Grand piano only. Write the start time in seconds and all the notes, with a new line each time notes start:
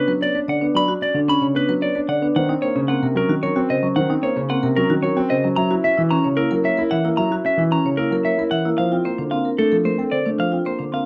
Already playing: B3
0.08 F#3
0.21 B3
0.35 D4
0.48 D3
0.62 B3
0.74 F#3
0.89 D4
1.02 C#4
1.14 D3
1.28 C#4
1.41 C#3
1.55 B3
1.69 F#3
1.82 B3
1.95 D4
2.08 D3
2.22 B3
2.36 D#3
2.49 C4
2.63 A#3
2.75 C#3
2.89 A#3
3.02 C3
3.15 F#3
3.29 D#3
3.43 F#3
3.56 C4
3.69 C#3
3.82 F#3
3.96 D#3
4.10 C4
4.22 A#3
4.36 C#3
4.50 A#3
4.63 C3
4.77 F#3
4.90 D#3
5.03 F#3
5.17 C4
5.31 C#3
5.44 F#3
5.57 F#3
5.71 E4
5.84 C#4
5.98 E3
6.12 C#4
6.25 C#3
6.38 A#3
6.52 F#3
6.65 A#3
6.79 E4
6.92 E3
7.04 A#3
7.18 F#3
7.31 E4
7.45 C#4
7.57 E3
7.71 C#4
7.85 C#3
7.98 A#3
8.11 F#3
8.25 A#3
8.38 E4
8.51 E3
8.66 A#3
8.79 F3
8.92 C4
9.05 A#3
9.19 D3
9.32 A#3
9.59 A3
9.72 F3
9.85 A3
9.98 C4
10.12 D3
10.26 A3
10.39 F3
10.53 C4
10.66 A#3
10.79 D3
10.93 A#3